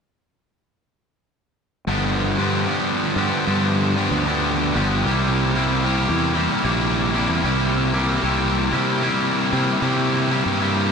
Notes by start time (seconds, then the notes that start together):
1.87 G1 G2 D3 F3 B3 D4 G4
2.37 G2 D3 F3 B3 D4 G4
2.67 G2 D3 F3 B3 D4 G4
3.16 G2 D3 F3 B3 D4 G4
3.46 G2 D3 F3 B3 D4 G4
3.96 G2 D3 F3 B3 D4 G4
4.11 D2
4.26 G2 D3 F3 B3 D4 G4
4.75 G1 G2 D3 F3 B3 D4 G4
5.05 C2 C3 G3 A#3 E4 G4
5.55 C3 G3 A#3 E4 G4
5.85 C3 G3 A#3 E4 G4
6.09 E2
6.33 C3 G3 A#3 E4 G4
6.64 A#1 C3 G3 A#3 E4 G4
7.13 C3 G3 A#3 E4 G4
7.29 E2
7.43 C2 C3 G3 A#3 E4 G4
7.93 C3 G3 A#3 E4 G4
8.22 C2 C3 G3 A#3 E4 G4
8.72 C3 G3 A#3 E4 G4
9.02 C3 G3 A#3 E4 G4
9.51 C3 G3 A#3 E4 G4
9.81 C3 G3 A#3 E4 G4
10.30 C3 G3 A#3 E4 G4
10.46 G2
10.60 C3 G3 A#3 E4 G4